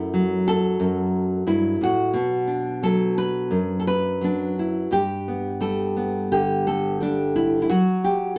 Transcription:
nylon-string guitar
Already playing: F#2 A3 E4
0.14 F#3
0.48 A4
0.80 F#2
1.47 G2 E4
1.81 A2 F#4
2.13 B2
2.48 D4
2.83 F#3 A4
3.18 B4
3.51 F#2
3.80 A4
3.87 B4
4.21 F#3 D4
4.59 E4
4.91 G2 G4
5.28 B3
5.60 G3 A4
5.97 B3
6.32 D3 G4
6.67 A4
7.00 G3 D4
7.36 E4
7.62 E4
7.70 F#3 F#4
8.04 G4

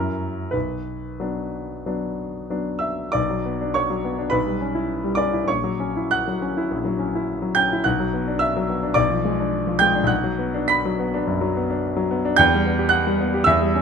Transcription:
grand piano
Already playing: F#2 F#3 C#4 E4 A#4
0.51 B1 B4
1.20 F#3 B3 D4
1.86 F#3 B3 D4
2.50 F#3 B3 D4
2.79 E5 E6
3.12 B1 D5 D6
3.30 F#3
3.45 B3
3.61 D4
3.74 C#5 C#6
3.90 F#3
4.04 B3
4.19 D4
4.30 B1 B4 B5
4.47 G3
4.61 C#4
4.75 E4
5.04 G3
5.15 C#4 D5 D6
5.33 E4
5.44 A#1 C#5 C#6
5.64 F#3
5.80 C#4
5.97 E4
6.11 F#5 F#6
6.27 F#3
6.42 C#4
6.57 E4
6.71 A#1
6.85 F#3
6.99 C#4
7.15 E4
7.42 F#3
7.55 C#4 G5 G6
7.73 E4
7.84 B1 F#5 F#6
8.00 F#3
8.13 B3
8.28 D4
8.39 E5 E6
8.56 F#3
8.69 B3
8.83 D4
8.94 B1 D5 D6
9.10 F3
9.25 G#3
9.40 D4
9.67 F3
9.79 G#3 G5 G6
9.96 D4
10.04 B1 F#6
10.08 F#5
10.24 F#3
10.39 B3
10.54 D4
10.68 B5 B6
10.85 F#3
10.99 B3
11.14 D4
11.27 F#2
11.41 F#3
11.57 B3
11.70 D4
11.97 F#3
12.11 B3
12.25 D4
12.36 E2 G5 G6
12.54 G3
12.66 B3
12.79 G4
12.89 F#5 F#6
13.07 G3
13.21 B3
13.34 G4
13.44 E2 E5 E6
13.62 G3
13.75 C#4

